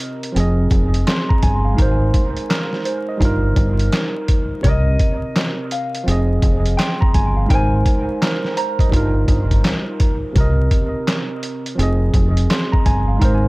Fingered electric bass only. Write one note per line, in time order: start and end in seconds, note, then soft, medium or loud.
0.36 0.68 F1 loud
0.71 1.03 F1 medium
1.43 1.75 G1 medium
1.79 2.11 G#1 loud
3.21 3.53 G1 loud
3.56 3.89 G1 medium
4.64 4.96 C2 loud
6.07 6.39 F1 loud
6.42 6.75 F1 medium
7.15 7.46 G1 medium
7.50 7.82 G#1 loud
8.92 9.25 G1 loud
9.28 9.60 G1 medium
10.36 10.68 C2 loud
11.79 12.11 F1 loud
12.14 12.46 F1 medium
12.86 13.18 G1 medium
13.21 13.48 G#1 loud